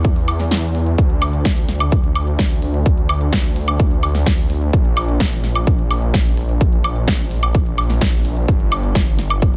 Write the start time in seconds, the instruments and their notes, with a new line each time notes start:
Already playing: detuned saw bass E2
0.05 kick, closed hi-hat
0.16 open hi-hat
0.28 open hi-hat, high woodblock
0.40 snare, closed hi-hat
0.51 snare, closed hi-hat
0.63 closed hi-hat
0.75 open hi-hat
0.87 closed hi-hat
0.98 detuned saw bass D2, kick, closed hi-hat
1.10 closed hi-hat
1.22 open hi-hat, high woodblock
1.33 closed hi-hat
1.45 kick, snare, closed hi-hat
1.57 closed hi-hat
1.69 snare, open hi-hat
1.80 closed hi-hat, high woodblock
1.92 kick, closed hi-hat
2.04 closed hi-hat
2.15 open hi-hat, high woodblock
2.27 closed hi-hat
2.39 kick, snare, closed hi-hat
2.51 closed hi-hat
2.62 open hi-hat
2.74 closed hi-hat
2.86 kick, closed hi-hat
2.98 closed hi-hat
3.09 open hi-hat, high woodblock
3.21 closed hi-hat
3.33 kick, snare, closed hi-hat
3.44 closed hi-hat
3.56 open hi-hat
3.68 closed hi-hat, high woodblock
3.80 kick, closed hi-hat
3.91 closed hi-hat
4.03 open hi-hat, high woodblock
4.15 snare, closed hi-hat
4.26 kick, snare, closed hi-hat
4.38 closed hi-hat
4.50 open hi-hat
4.62 closed hi-hat
4.73 detuned saw bass A#1, kick, closed hi-hat
4.85 closed hi-hat
4.97 open hi-hat, high woodblock
5.09 closed hi-hat
5.20 kick, snare, closed hi-hat
5.32 closed hi-hat
5.44 snare, open hi-hat
5.55 closed hi-hat, high woodblock
5.67 kick, closed hi-hat
5.79 closed hi-hat
5.91 open hi-hat, high woodblock
6.02 closed hi-hat
6.14 kick, snare, closed hi-hat
6.26 closed hi-hat
6.37 open hi-hat
6.49 closed hi-hat
6.61 kick, closed hi-hat
6.73 closed hi-hat
6.84 open hi-hat, high woodblock
6.96 closed hi-hat
7.08 kick, snare, closed hi-hat
7.19 closed hi-hat
7.31 open hi-hat
7.43 closed hi-hat, high woodblock
7.55 kick, closed hi-hat
7.66 closed hi-hat
7.78 open hi-hat, high woodblock
7.90 snare, closed hi-hat
8.01 kick, snare, closed hi-hat
8.13 closed hi-hat
8.25 open hi-hat
8.37 closed hi-hat
8.48 detuned saw bass G1, kick, closed hi-hat
8.60 closed hi-hat
8.72 open hi-hat, high woodblock
8.84 closed hi-hat
8.95 kick, snare, closed hi-hat
9.07 closed hi-hat
9.19 snare, open hi-hat
9.30 closed hi-hat, high woodblock
9.42 kick, closed hi-hat